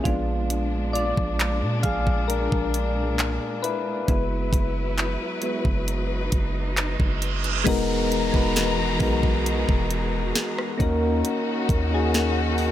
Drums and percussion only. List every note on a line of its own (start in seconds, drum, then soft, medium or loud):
0.05 kick loud
0.05 closed hi-hat medium
0.50 closed hi-hat medium
0.95 closed hi-hat medium
1.17 kick medium
1.40 clap loud
1.40 closed hi-hat medium
1.83 kick medium
1.83 closed hi-hat medium
2.07 kick medium
2.30 closed hi-hat medium
2.52 kick medium
2.74 closed hi-hat medium
3.19 clap loud
3.19 closed hi-hat medium
3.64 closed hi-hat medium
4.08 kick loud
4.08 closed hi-hat medium
4.53 kick medium
4.53 closed hi-hat medium
4.98 clap loud
4.98 closed hi-hat medium
5.42 closed hi-hat medium
5.65 kick medium
5.88 closed hi-hat medium
6.32 kick medium
6.32 closed hi-hat medium
6.77 clap loud
6.77 closed hi-hat medium
7.00 kick medium
7.22 closed hi-hat medium
7.44 closed hi-hat soft
7.67 kick loud
7.67 closed hi-hat medium
7.67 crash loud
8.12 closed hi-hat medium
8.34 kick medium
8.56 snare loud
8.56 closed hi-hat medium
9.00 kick medium
9.00 open hi-hat soft
9.23 kick medium
9.46 closed hi-hat medium
9.69 kick medium
9.91 closed hi-hat medium
10.35 snare loud
10.35 closed hi-hat medium
10.58 cross-stick medium
10.80 kick loud
10.80 closed hi-hat medium
11.25 closed hi-hat medium
11.69 kick loud
11.69 closed hi-hat medium
12.14 snare loud
12.14 closed hi-hat medium
12.58 open hi-hat soft